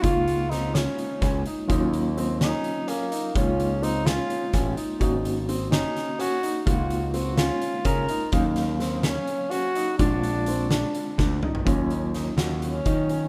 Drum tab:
HH |x-x-x-x-x-x-x-|x-x-x-x-x-x-x-|x-x-x-x-x-x-x-|x-x-x-x-x-x-x-|
SD |----o-o---o---|------o-------|------o---o---|------o-o-----|
T2 |--------------|--------------|--------------|--------------|
FT |--------------|--------------|--------------|--------------|
BD |o---------o---|o-------------|o---------o---|o-------------|

HH |x-x-x-x-x-x-x-|x-x-x-x-x-x-x-|x-x-x-x-x-----|x-x-x-x-x-x-x-|
SD |------o-------|--o-o-o-------|------o---o---|----o-o-------|
T2 |--------------|--------------|------------o-|--------------|
FT |--------------|--------------|-------------o|--------------|
BD |o---------o---|o-------------|o---------o---|o---------o---|